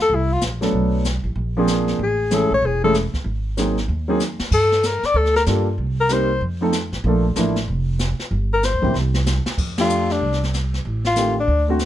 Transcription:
0.02 alto saxophone A4
0.10 upright bass C2, brush sweep
0.15 alto saxophone E4
0.33 alto saxophone F4
0.41 upright bass A#1, snare, hi-hat pedal
0.61 grand piano F#3 A3 B3 D4 A4, snare
0.72 upright bass B1, brush sweep
1.04 snare, hi-hat pedal
1.24 upright bass A1
1.36 upright bass A#1, brush sweep
1.57 grand piano F3 A#3 C4 D4 G#4
1.67 snare, hi-hat pedal
1.88 snare
1.99 upright bass A1, brush sweep
2.03 alto saxophone G#4
2.31 grand piano E3 G#3 A3 C#4 G#4, alto saxophone A4, snare, hi-hat pedal
2.51 upright bass A#1, alto saxophone C#5
2.62 upright bass E1, brush sweep
2.66 alto saxophone G#4
2.84 grand piano E3 G#3 A3 C#4 G#4, alto saxophone A4
2.94 snare, hi-hat pedal
3.13 muted upright bass stroke, kick, snare
3.24 upright bass G#1, brush sweep
3.57 grand piano F#3 A#3 C4 D#4 G#4, snare, hi-hat pedal
3.77 snare
3.88 upright bass D#2, brush sweep
4.08 grand piano F#3 A#3 C4 D#4 G#4
4.20 snare, hi-hat pedal
4.39 muted upright bass stroke, snare
4.51 upright bass G2, alto saxophone A4, brush sweep, kick, crash
4.72 snare
4.83 alto saxophone A#4, snare, hi-hat pedal
5.03 alto saxophone D5, muted upright bass stroke, snare
5.14 upright bass D2, alto saxophone A4, brush sweep
5.25 snare
5.36 alto saxophone A#4, snare
5.46 upright bass G2, grand piano G3 A#3 D4 F4 A4, snare, hi-hat pedal
5.78 upright bass C2, brush sweep
6.00 alto saxophone A#4
6.09 grand piano G3 A#3 C4 D#4 A#4, alto saxophone C5, snare, hi-hat pedal
6.41 upright bass F2, brush sweep
6.61 grand piano F3 A3 C4 D#4 A4
6.72 snare, hi-hat pedal
6.92 upright bass A1, snare
7.04 upright bass A#1, grand piano F3 A3 A#3 D4, brush sweep
7.08 grand piano A4
7.36 upright bass A1, grand piano F3 A3 A#3 D4 E4, snare, hi-hat pedal
7.56 snare
7.68 upright bass F1, brush sweep
7.99 snare, hi-hat pedal
8.19 muted upright bass stroke, snare
8.31 upright bass G1, brush sweep
8.53 alto saxophone A#4
8.63 alto saxophone C5, snare, hi-hat pedal
8.73 upright bass D2
8.82 upright bass A#1, grand piano E3 G3 A#3 C4 G4, kick
8.94 upright bass C2, snare
9.14 snare
9.26 snare, hi-hat pedal
9.46 muted upright bass stroke, snare
9.58 upright bass F2, brush sweep, kick, crash
9.78 grand piano F3 A3 D4 G4, alto saxophone F4, snare, ride
9.89 hi-hat pedal
10.10 alto saxophone D4, snare
10.20 upright bass C2, brush sweep
10.32 snare
10.43 snare
10.54 snare, hi-hat pedal
10.74 snare
10.85 upright bass A1, brush sweep
11.05 alto saxophone F4, snare
11.16 grand piano D#3 A3 C4 G4, snare, hi-hat pedal
11.40 alto saxophone D4
11.48 upright bass D2, brush sweep
11.68 grand piano D3 A3 C4 F#4
11.79 snare, hi-hat pedal

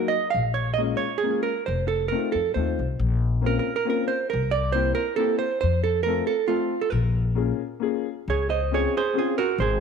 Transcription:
Already playing: upright piano F#3 A#3 D#4 F#4, hollow-body jazz guitar A#4
0.08 hollow-body jazz guitar D#5
0.30 hollow-body jazz guitar F5
0.34 upright bass A#1
0.54 hollow-body jazz guitar C#5
0.74 hollow-body jazz guitar D#5
0.78 upright piano G#3 A#3 C#4 F4
0.97 hollow-body jazz guitar C#5
1.18 hollow-body jazz guitar G#4
1.23 upright piano G#3 A#3 C#4 F4
1.43 hollow-body jazz guitar A#4
1.66 upright bass F1, hollow-body jazz guitar C5
1.88 hollow-body jazz guitar A4
2.08 upright piano A3 C4 D#4, hollow-body jazz guitar A#4
2.14 upright piano F4
2.32 upright bass F2, hollow-body jazz guitar A4
2.54 upright bass D#2, upright piano A3 C4 D#4 F4, hollow-body jazz guitar C5
2.79 upright bass C2
2.99 upright bass A#1
3.41 upright piano A#3 C4 C#4 F4
3.46 hollow-body jazz guitar A#4
3.59 hollow-body jazz guitar A#4
3.76 hollow-body jazz guitar A#4
3.85 upright piano A#3 C4 C#4 F4
3.90 hollow-body jazz guitar A#4
4.08 hollow-body jazz guitar C5
4.30 upright bass C2, hollow-body jazz guitar A#4
4.51 hollow-body jazz guitar D5
4.72 upright piano A#3 C4 E4 G4, hollow-body jazz guitar C5
4.95 hollow-body jazz guitar A#4
5.16 upright piano A#3 C4 E4 G4, hollow-body jazz guitar A4
5.39 hollow-body jazz guitar C5
5.61 upright bass F2, hollow-body jazz guitar C5
5.84 hollow-body jazz guitar A4
6.03 upright piano A3, hollow-body jazz guitar A#4
6.07 upright piano C4 F4 A4
6.27 hollow-body jazz guitar A4
6.48 upright piano A3 C4 F4 A4, hollow-body jazz guitar F4
6.81 hollow-body jazz guitar A4
6.90 upright bass A#1, hollow-body jazz guitar A#4
7.35 upright piano A#3 C#4 F4 G#4
7.80 upright piano A#3 C#4 F4 G#4
8.28 upright bass C#2, hollow-body jazz guitar G#4 C#5
8.50 hollow-body jazz guitar C5 D#5
8.71 upright piano C4 C#4 F4 G#4, hollow-body jazz guitar G#4 C#5
8.97 hollow-body jazz guitar G#4 C5
9.14 upright piano C4 C#4 F4 G#4
9.18 hollow-body jazz guitar F4 G#4
9.38 hollow-body jazz guitar F#4 A#4
9.58 upright bass G#1, hollow-body jazz guitar G#4 C5

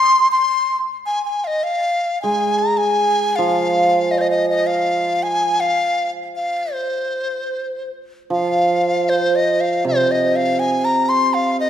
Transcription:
Already playing: dizi C6
0.31 dizi C6
1.06 dizi G#5
1.25 dizi G#5
1.44 dizi D#5 F5
1.63 dizi F5
2.22 hammered dulcimer G#3, dizi G#5
2.58 dizi A#5
2.77 dizi G#5
3.36 hammered dulcimer F3, dizi F5
4.11 dizi D#5
4.18 dizi C5 D#5
4.30 dizi D#5
4.49 dizi D#5
4.67 dizi F5
5.23 dizi G#5
5.60 dizi F5
6.36 dizi F5
6.73 dizi C5
8.30 hammered dulcimer F3, dizi F5
9.09 dizi C5
9.35 dizi D#5
9.61 dizi F5
9.85 hammered dulcimer C3, dizi C5
10.11 dizi D#5
10.36 dizi F5
10.59 dizi G#5
10.85 dizi A#5
11.09 dizi C6
11.34 dizi F5
11.60 dizi D#5

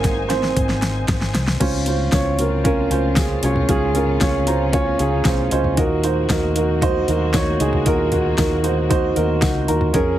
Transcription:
Already playing: fingered electric bass G#1, upright piano D#3 G#3 A#3 C4 F#4 G#4 A#4 F#5 G#5, string section D#4 C5 G#5
0.04 kick, snare, closed hi-hat
0.29 upright piano C4 C5, snare, closed hi-hat
0.43 snare
0.57 fingered electric bass G#1, kick, closed hi-hat
0.69 snare
0.82 snare, closed hi-hat
1.08 fingered electric bass G#1, kick, snare, closed hi-hat
1.21 snare
1.35 fingered electric bass C2, snare, closed hi-hat
1.48 snare
1.60 fingered electric bass C#2, upright piano G#2 C#4 F4 C5, string section C#3 C4 F4, kick, closed hi-hat, crash
1.86 upright piano C#4 F4 C5, closed hi-hat
2.12 fingered electric bass C#2, upright piano C#4 F4 C#5, kick, snare, closed hi-hat, tambourine
2.38 upright piano C#4 F4 A#4, closed hi-hat
2.64 upright piano C#4 F4 A#4, kick, closed hi-hat
2.90 fingered electric bass C#2, upright piano C#4 F4 C5, closed hi-hat
3.16 upright piano C#4 F4 G#4, kick, snare, closed hi-hat, tambourine
3.43 fingered electric bass C2, upright piano C#4 F4 C#5, closed hi-hat
3.56 floor tom
3.68 fingered electric bass C#2, upright piano G#2 C#4 F4 G#4, string section C#4, kick, closed hi-hat
3.94 upright piano C#4 F4 A#4, closed hi-hat
4.21 fingered electric bass C#2, upright piano C#4 F4 C#5, kick, snare, closed hi-hat, tambourine
4.46 upright piano C#4 F4 C5 A#5, closed hi-hat
4.72 upright piano C#4 F4 C#5 G#5, kick, closed hi-hat
4.99 fingered electric bass C#2, upright piano C#4 F4 G#4 G#5, closed hi-hat
5.25 fingered electric bass C2, upright piano C#4 F4 C5 F5, kick, snare, closed hi-hat, tambourine
5.51 fingered electric bass C#2, upright piano C#4 F4 C5 D#5, closed hi-hat
5.64 floor tom
5.77 fingered electric bass D#2, upright piano A#2 D#4 F#4 A#4, string section D#3 A#3 F#4, kick, closed hi-hat
6.03 upright piano D#4 F#4 C5, closed hi-hat
6.29 fingered electric bass D#2, upright piano D#4 F#4 A#4, kick, snare, closed hi-hat, tambourine
6.55 upright piano D#4 F#4 A#4, closed hi-hat
6.81 upright piano D#4 F#4 C5, kick, closed hi-hat
7.08 fingered electric bass D#2, upright piano D#4 F#4 A#4, closed hi-hat
7.33 upright piano D#4 F#4 C#5, kick, snare, closed hi-hat, tambourine
7.60 fingered electric bass C#2, upright piano D#4 F#4 G#4, closed hi-hat
7.73 floor tom
7.85 fingered electric bass D#2, upright piano A#2 D#4 F#4 A#4, kick, closed hi-hat
8.11 upright piano D#4 F#4 A#4, closed hi-hat, floor tom
8.37 fingered electric bass D#2, upright piano D#4 F#4 A#4, kick, snare, closed hi-hat, tambourine
8.63 upright piano D#4 F#4 C5, closed hi-hat
8.89 upright piano D#4 F#4 C5, kick, closed hi-hat
9.15 fingered electric bass D#2, upright piano D#4 F#4 A#4 D#5, closed hi-hat
9.41 fingered electric bass C#2, upright piano D#4 F#4 A#4 F#5, kick, snare, closed hi-hat, tambourine
9.67 fingered electric bass D#2, upright piano D#4 F#4 A#4 A#5, closed hi-hat
9.81 floor tom
9.93 fingered electric bass F2, string section C#3 A#3 G#4, upright piano F3 C#4 G#4 A#4, kick, closed hi-hat

